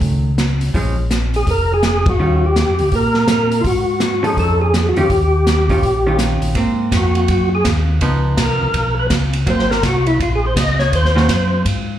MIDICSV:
0, 0, Header, 1, 5, 480
1, 0, Start_track
1, 0, Tempo, 363857
1, 981, Time_signature, 4, 2, 24, 8
1, 15816, End_track
2, 0, Start_track
2, 0, Title_t, "Tonewheel organ"
2, 0, Program_c, 0, 16
2, 1796, Note_on_c, 0, 68, 88
2, 1962, Note_off_c, 0, 68, 0
2, 1986, Note_on_c, 0, 70, 91
2, 2275, Note_off_c, 0, 70, 0
2, 2291, Note_on_c, 0, 68, 85
2, 2761, Note_off_c, 0, 68, 0
2, 2762, Note_on_c, 0, 66, 86
2, 3236, Note_off_c, 0, 66, 0
2, 3246, Note_on_c, 0, 67, 75
2, 3401, Note_off_c, 0, 67, 0
2, 3417, Note_on_c, 0, 67, 86
2, 3892, Note_off_c, 0, 67, 0
2, 3895, Note_on_c, 0, 70, 95
2, 4324, Note_off_c, 0, 70, 0
2, 4370, Note_on_c, 0, 70, 97
2, 4759, Note_on_c, 0, 65, 63
2, 4778, Note_off_c, 0, 70, 0
2, 4823, Note_off_c, 0, 65, 0
2, 4836, Note_on_c, 0, 66, 83
2, 5296, Note_off_c, 0, 66, 0
2, 5312, Note_on_c, 0, 66, 70
2, 5615, Note_on_c, 0, 68, 91
2, 5616, Note_off_c, 0, 66, 0
2, 5772, Note_off_c, 0, 68, 0
2, 5799, Note_on_c, 0, 69, 85
2, 6070, Note_off_c, 0, 69, 0
2, 6089, Note_on_c, 0, 68, 85
2, 6422, Note_off_c, 0, 68, 0
2, 6449, Note_on_c, 0, 66, 52
2, 6562, Note_off_c, 0, 66, 0
2, 6604, Note_on_c, 0, 67, 83
2, 8143, Note_off_c, 0, 67, 0
2, 9181, Note_on_c, 0, 66, 63
2, 9885, Note_off_c, 0, 66, 0
2, 9957, Note_on_c, 0, 68, 75
2, 10107, Note_off_c, 0, 68, 0
2, 11100, Note_on_c, 0, 70, 71
2, 11805, Note_off_c, 0, 70, 0
2, 11867, Note_on_c, 0, 71, 88
2, 11963, Note_off_c, 0, 71, 0
2, 12532, Note_on_c, 0, 72, 72
2, 12806, Note_off_c, 0, 72, 0
2, 12808, Note_on_c, 0, 70, 94
2, 12973, Note_off_c, 0, 70, 0
2, 12999, Note_on_c, 0, 66, 73
2, 13280, Note_off_c, 0, 66, 0
2, 13288, Note_on_c, 0, 64, 90
2, 13453, Note_off_c, 0, 64, 0
2, 13488, Note_on_c, 0, 65, 73
2, 13626, Note_off_c, 0, 65, 0
2, 13657, Note_on_c, 0, 68, 72
2, 13791, Note_off_c, 0, 68, 0
2, 13802, Note_on_c, 0, 72, 92
2, 13943, Note_off_c, 0, 72, 0
2, 13951, Note_on_c, 0, 75, 96
2, 14236, Note_off_c, 0, 75, 0
2, 14239, Note_on_c, 0, 73, 94
2, 14409, Note_off_c, 0, 73, 0
2, 14451, Note_on_c, 0, 72, 75
2, 15342, Note_off_c, 0, 72, 0
2, 15816, End_track
3, 0, Start_track
3, 0, Title_t, "Hollow-body jazz guitar"
3, 0, Program_c, 1, 26
3, 0, Note_on_c, 1, 51, 53
3, 0, Note_on_c, 1, 57, 58
3, 0, Note_on_c, 1, 61, 63
3, 401, Note_off_c, 1, 51, 0
3, 404, Note_off_c, 1, 57, 0
3, 409, Note_off_c, 1, 61, 0
3, 983, Note_on_c, 1, 53, 61
3, 998, Note_on_c, 1, 61, 62
3, 1001, Note_on_c, 1, 56, 66
3, 1255, Note_off_c, 1, 53, 0
3, 1262, Note_off_c, 1, 61, 0
3, 1264, Note_off_c, 1, 56, 0
3, 2894, Note_on_c, 1, 51, 55
3, 2898, Note_on_c, 1, 61, 59
3, 2902, Note_on_c, 1, 55, 50
3, 2908, Note_on_c, 1, 65, 61
3, 3170, Note_off_c, 1, 51, 0
3, 3172, Note_off_c, 1, 61, 0
3, 3174, Note_off_c, 1, 55, 0
3, 3177, Note_off_c, 1, 65, 0
3, 5579, Note_on_c, 1, 61, 58
3, 5580, Note_on_c, 1, 53, 65
3, 5591, Note_on_c, 1, 69, 76
3, 5594, Note_on_c, 1, 63, 66
3, 6210, Note_off_c, 1, 61, 0
3, 6211, Note_off_c, 1, 53, 0
3, 6216, Note_off_c, 1, 69, 0
3, 6218, Note_off_c, 1, 63, 0
3, 6556, Note_on_c, 1, 51, 58
3, 6557, Note_on_c, 1, 61, 59
3, 6564, Note_on_c, 1, 65, 66
3, 6565, Note_on_c, 1, 67, 63
3, 6716, Note_off_c, 1, 51, 0
3, 6717, Note_off_c, 1, 61, 0
3, 6720, Note_off_c, 1, 65, 0
3, 6721, Note_off_c, 1, 67, 0
3, 7516, Note_on_c, 1, 51, 55
3, 7522, Note_on_c, 1, 61, 69
3, 7528, Note_on_c, 1, 65, 73
3, 7535, Note_on_c, 1, 67, 68
3, 7675, Note_off_c, 1, 51, 0
3, 7678, Note_off_c, 1, 61, 0
3, 7681, Note_off_c, 1, 65, 0
3, 7685, Note_off_c, 1, 67, 0
3, 8001, Note_on_c, 1, 61, 58
3, 8003, Note_on_c, 1, 51, 62
3, 8021, Note_on_c, 1, 65, 61
3, 8021, Note_on_c, 1, 67, 61
3, 8619, Note_off_c, 1, 61, 0
3, 8620, Note_off_c, 1, 51, 0
3, 8629, Note_off_c, 1, 65, 0
3, 8629, Note_off_c, 1, 67, 0
3, 8652, Note_on_c, 1, 58, 60
3, 8662, Note_on_c, 1, 60, 58
3, 9984, Note_off_c, 1, 58, 0
3, 9990, Note_off_c, 1, 60, 0
3, 10577, Note_on_c, 1, 53, 55
3, 10583, Note_on_c, 1, 59, 68
3, 10586, Note_on_c, 1, 63, 60
3, 11907, Note_off_c, 1, 53, 0
3, 11910, Note_off_c, 1, 59, 0
3, 11912, Note_off_c, 1, 63, 0
3, 12486, Note_on_c, 1, 54, 58
3, 12499, Note_on_c, 1, 58, 58
3, 12503, Note_on_c, 1, 60, 65
3, 12761, Note_off_c, 1, 54, 0
3, 12768, Note_off_c, 1, 58, 0
3, 12770, Note_off_c, 1, 60, 0
3, 14713, Note_on_c, 1, 51, 52
3, 14720, Note_on_c, 1, 58, 55
3, 14722, Note_on_c, 1, 61, 61
3, 14735, Note_on_c, 1, 66, 64
3, 14875, Note_off_c, 1, 51, 0
3, 14878, Note_off_c, 1, 58, 0
3, 14879, Note_off_c, 1, 61, 0
3, 14886, Note_off_c, 1, 66, 0
3, 15816, End_track
4, 0, Start_track
4, 0, Title_t, "Tonewheel organ"
4, 0, Program_c, 2, 16
4, 13, Note_on_c, 2, 37, 72
4, 929, Note_off_c, 2, 37, 0
4, 977, Note_on_c, 2, 34, 74
4, 1891, Note_off_c, 2, 34, 0
4, 1936, Note_on_c, 2, 29, 68
4, 2849, Note_off_c, 2, 29, 0
4, 2898, Note_on_c, 2, 39, 77
4, 3494, Note_off_c, 2, 39, 0
4, 3547, Note_on_c, 2, 41, 57
4, 3689, Note_on_c, 2, 38, 69
4, 3692, Note_off_c, 2, 41, 0
4, 3842, Note_off_c, 2, 38, 0
4, 3846, Note_on_c, 2, 46, 68
4, 4298, Note_off_c, 2, 46, 0
4, 4321, Note_on_c, 2, 46, 75
4, 4775, Note_off_c, 2, 46, 0
4, 4806, Note_on_c, 2, 44, 78
4, 5723, Note_off_c, 2, 44, 0
4, 5765, Note_on_c, 2, 41, 76
4, 6500, Note_off_c, 2, 41, 0
4, 6546, Note_on_c, 2, 41, 36
4, 6638, Note_off_c, 2, 41, 0
4, 6728, Note_on_c, 2, 39, 78
4, 7642, Note_off_c, 2, 39, 0
4, 7688, Note_on_c, 2, 34, 69
4, 8420, Note_off_c, 2, 34, 0
4, 8467, Note_on_c, 2, 34, 59
4, 8635, Note_off_c, 2, 34, 0
4, 8645, Note_on_c, 2, 44, 74
4, 9113, Note_off_c, 2, 44, 0
4, 9122, Note_on_c, 2, 41, 85
4, 9592, Note_off_c, 2, 41, 0
4, 9606, Note_on_c, 2, 42, 62
4, 10073, Note_off_c, 2, 42, 0
4, 10085, Note_on_c, 2, 39, 74
4, 10553, Note_off_c, 2, 39, 0
4, 10566, Note_on_c, 2, 37, 82
4, 11034, Note_off_c, 2, 37, 0
4, 11049, Note_on_c, 2, 36, 82
4, 11331, Note_off_c, 2, 36, 0
4, 11360, Note_on_c, 2, 36, 39
4, 11446, Note_off_c, 2, 36, 0
4, 11527, Note_on_c, 2, 35, 73
4, 11994, Note_off_c, 2, 35, 0
4, 12008, Note_on_c, 2, 37, 74
4, 12475, Note_off_c, 2, 37, 0
4, 12488, Note_on_c, 2, 32, 83
4, 12955, Note_off_c, 2, 32, 0
4, 12970, Note_on_c, 2, 36, 91
4, 13437, Note_off_c, 2, 36, 0
4, 13451, Note_on_c, 2, 34, 70
4, 13918, Note_off_c, 2, 34, 0
4, 13934, Note_on_c, 2, 37, 85
4, 14400, Note_off_c, 2, 37, 0
4, 14411, Note_on_c, 2, 39, 77
4, 14879, Note_off_c, 2, 39, 0
4, 14893, Note_on_c, 2, 42, 86
4, 15360, Note_off_c, 2, 42, 0
4, 15370, Note_on_c, 2, 44, 73
4, 15816, Note_off_c, 2, 44, 0
4, 15816, End_track
5, 0, Start_track
5, 0, Title_t, "Drums"
5, 16, Note_on_c, 9, 36, 30
5, 19, Note_on_c, 9, 46, 38
5, 148, Note_off_c, 9, 36, 0
5, 151, Note_off_c, 9, 46, 0
5, 502, Note_on_c, 9, 38, 62
5, 504, Note_on_c, 9, 42, 48
5, 633, Note_off_c, 9, 38, 0
5, 636, Note_off_c, 9, 42, 0
5, 805, Note_on_c, 9, 46, 37
5, 937, Note_off_c, 9, 46, 0
5, 978, Note_on_c, 9, 36, 32
5, 983, Note_on_c, 9, 46, 40
5, 1110, Note_off_c, 9, 36, 0
5, 1114, Note_off_c, 9, 46, 0
5, 1460, Note_on_c, 9, 38, 56
5, 1462, Note_on_c, 9, 42, 49
5, 1592, Note_off_c, 9, 38, 0
5, 1594, Note_off_c, 9, 42, 0
5, 1765, Note_on_c, 9, 46, 36
5, 1897, Note_off_c, 9, 46, 0
5, 1936, Note_on_c, 9, 36, 31
5, 1938, Note_on_c, 9, 46, 45
5, 2068, Note_off_c, 9, 36, 0
5, 2070, Note_off_c, 9, 46, 0
5, 2412, Note_on_c, 9, 38, 64
5, 2415, Note_on_c, 9, 42, 50
5, 2544, Note_off_c, 9, 38, 0
5, 2546, Note_off_c, 9, 42, 0
5, 2718, Note_on_c, 9, 51, 63
5, 2719, Note_on_c, 9, 36, 80
5, 2850, Note_off_c, 9, 51, 0
5, 2851, Note_off_c, 9, 36, 0
5, 3377, Note_on_c, 9, 38, 61
5, 3380, Note_on_c, 9, 42, 48
5, 3509, Note_off_c, 9, 38, 0
5, 3512, Note_off_c, 9, 42, 0
5, 3677, Note_on_c, 9, 46, 36
5, 3809, Note_off_c, 9, 46, 0
5, 3847, Note_on_c, 9, 46, 43
5, 3850, Note_on_c, 9, 36, 30
5, 3978, Note_off_c, 9, 46, 0
5, 3982, Note_off_c, 9, 36, 0
5, 4143, Note_on_c, 9, 38, 31
5, 4275, Note_off_c, 9, 38, 0
5, 4320, Note_on_c, 9, 38, 68
5, 4323, Note_on_c, 9, 42, 52
5, 4452, Note_off_c, 9, 38, 0
5, 4455, Note_off_c, 9, 42, 0
5, 4637, Note_on_c, 9, 46, 39
5, 4769, Note_off_c, 9, 46, 0
5, 4806, Note_on_c, 9, 36, 33
5, 4807, Note_on_c, 9, 46, 47
5, 4938, Note_off_c, 9, 36, 0
5, 4939, Note_off_c, 9, 46, 0
5, 5279, Note_on_c, 9, 38, 60
5, 5281, Note_on_c, 9, 42, 48
5, 5411, Note_off_c, 9, 38, 0
5, 5413, Note_off_c, 9, 42, 0
5, 5594, Note_on_c, 9, 46, 34
5, 5726, Note_off_c, 9, 46, 0
5, 5764, Note_on_c, 9, 36, 30
5, 5769, Note_on_c, 9, 46, 39
5, 5896, Note_off_c, 9, 36, 0
5, 5901, Note_off_c, 9, 46, 0
5, 6251, Note_on_c, 9, 38, 56
5, 6254, Note_on_c, 9, 42, 49
5, 6383, Note_off_c, 9, 38, 0
5, 6386, Note_off_c, 9, 42, 0
5, 6549, Note_on_c, 9, 46, 35
5, 6680, Note_off_c, 9, 46, 0
5, 6724, Note_on_c, 9, 36, 32
5, 6726, Note_on_c, 9, 46, 44
5, 6856, Note_off_c, 9, 36, 0
5, 6858, Note_off_c, 9, 46, 0
5, 7211, Note_on_c, 9, 38, 63
5, 7214, Note_on_c, 9, 42, 49
5, 7343, Note_off_c, 9, 38, 0
5, 7346, Note_off_c, 9, 42, 0
5, 7510, Note_on_c, 9, 36, 45
5, 7514, Note_on_c, 9, 46, 34
5, 7642, Note_off_c, 9, 36, 0
5, 7646, Note_off_c, 9, 46, 0
5, 7687, Note_on_c, 9, 36, 28
5, 7691, Note_on_c, 9, 46, 37
5, 7819, Note_off_c, 9, 36, 0
5, 7823, Note_off_c, 9, 46, 0
5, 8160, Note_on_c, 9, 38, 57
5, 8162, Note_on_c, 9, 42, 48
5, 8292, Note_off_c, 9, 38, 0
5, 8294, Note_off_c, 9, 42, 0
5, 8467, Note_on_c, 9, 46, 41
5, 8599, Note_off_c, 9, 46, 0
5, 8640, Note_on_c, 9, 51, 49
5, 8643, Note_on_c, 9, 36, 24
5, 8771, Note_off_c, 9, 51, 0
5, 8775, Note_off_c, 9, 36, 0
5, 9124, Note_on_c, 9, 36, 23
5, 9126, Note_on_c, 9, 38, 58
5, 9128, Note_on_c, 9, 44, 51
5, 9128, Note_on_c, 9, 51, 58
5, 9256, Note_off_c, 9, 36, 0
5, 9258, Note_off_c, 9, 38, 0
5, 9260, Note_off_c, 9, 44, 0
5, 9260, Note_off_c, 9, 51, 0
5, 9432, Note_on_c, 9, 51, 38
5, 9564, Note_off_c, 9, 51, 0
5, 9605, Note_on_c, 9, 36, 25
5, 9605, Note_on_c, 9, 51, 53
5, 9737, Note_off_c, 9, 36, 0
5, 9737, Note_off_c, 9, 51, 0
5, 10085, Note_on_c, 9, 36, 21
5, 10088, Note_on_c, 9, 38, 68
5, 10090, Note_on_c, 9, 44, 54
5, 10090, Note_on_c, 9, 51, 64
5, 10217, Note_off_c, 9, 36, 0
5, 10220, Note_off_c, 9, 38, 0
5, 10222, Note_off_c, 9, 44, 0
5, 10222, Note_off_c, 9, 51, 0
5, 10565, Note_on_c, 9, 51, 52
5, 10566, Note_on_c, 9, 36, 17
5, 10697, Note_off_c, 9, 51, 0
5, 10698, Note_off_c, 9, 36, 0
5, 11046, Note_on_c, 9, 36, 19
5, 11047, Note_on_c, 9, 38, 64
5, 11049, Note_on_c, 9, 44, 57
5, 11049, Note_on_c, 9, 51, 63
5, 11178, Note_off_c, 9, 36, 0
5, 11179, Note_off_c, 9, 38, 0
5, 11181, Note_off_c, 9, 44, 0
5, 11181, Note_off_c, 9, 51, 0
5, 11527, Note_on_c, 9, 36, 17
5, 11528, Note_on_c, 9, 51, 58
5, 11659, Note_off_c, 9, 36, 0
5, 11660, Note_off_c, 9, 51, 0
5, 12006, Note_on_c, 9, 38, 63
5, 12007, Note_on_c, 9, 36, 23
5, 12008, Note_on_c, 9, 44, 52
5, 12008, Note_on_c, 9, 51, 64
5, 12138, Note_off_c, 9, 38, 0
5, 12139, Note_off_c, 9, 36, 0
5, 12140, Note_off_c, 9, 44, 0
5, 12140, Note_off_c, 9, 51, 0
5, 12313, Note_on_c, 9, 51, 46
5, 12445, Note_off_c, 9, 51, 0
5, 12486, Note_on_c, 9, 36, 22
5, 12490, Note_on_c, 9, 51, 57
5, 12618, Note_off_c, 9, 36, 0
5, 12622, Note_off_c, 9, 51, 0
5, 12653, Note_on_c, 9, 38, 28
5, 12785, Note_off_c, 9, 38, 0
5, 12814, Note_on_c, 9, 38, 45
5, 12946, Note_off_c, 9, 38, 0
5, 12967, Note_on_c, 9, 36, 23
5, 12968, Note_on_c, 9, 38, 58
5, 12971, Note_on_c, 9, 44, 51
5, 12971, Note_on_c, 9, 51, 62
5, 13099, Note_off_c, 9, 36, 0
5, 13100, Note_off_c, 9, 38, 0
5, 13103, Note_off_c, 9, 44, 0
5, 13103, Note_off_c, 9, 51, 0
5, 13277, Note_on_c, 9, 51, 41
5, 13409, Note_off_c, 9, 51, 0
5, 13449, Note_on_c, 9, 36, 24
5, 13460, Note_on_c, 9, 51, 53
5, 13581, Note_off_c, 9, 36, 0
5, 13592, Note_off_c, 9, 51, 0
5, 13929, Note_on_c, 9, 36, 24
5, 13937, Note_on_c, 9, 38, 63
5, 13940, Note_on_c, 9, 44, 54
5, 13940, Note_on_c, 9, 51, 70
5, 14061, Note_off_c, 9, 36, 0
5, 14069, Note_off_c, 9, 38, 0
5, 14072, Note_off_c, 9, 44, 0
5, 14072, Note_off_c, 9, 51, 0
5, 14237, Note_on_c, 9, 38, 36
5, 14369, Note_off_c, 9, 38, 0
5, 14411, Note_on_c, 9, 36, 20
5, 14419, Note_on_c, 9, 51, 58
5, 14542, Note_off_c, 9, 36, 0
5, 14551, Note_off_c, 9, 51, 0
5, 14578, Note_on_c, 9, 38, 29
5, 14710, Note_off_c, 9, 38, 0
5, 14737, Note_on_c, 9, 38, 44
5, 14869, Note_off_c, 9, 38, 0
5, 14891, Note_on_c, 9, 38, 63
5, 14892, Note_on_c, 9, 36, 18
5, 14893, Note_on_c, 9, 44, 56
5, 14893, Note_on_c, 9, 51, 64
5, 15023, Note_off_c, 9, 36, 0
5, 15023, Note_off_c, 9, 38, 0
5, 15025, Note_off_c, 9, 44, 0
5, 15025, Note_off_c, 9, 51, 0
5, 15372, Note_on_c, 9, 36, 23
5, 15377, Note_on_c, 9, 51, 60
5, 15504, Note_off_c, 9, 36, 0
5, 15509, Note_off_c, 9, 51, 0
5, 15816, End_track
0, 0, End_of_file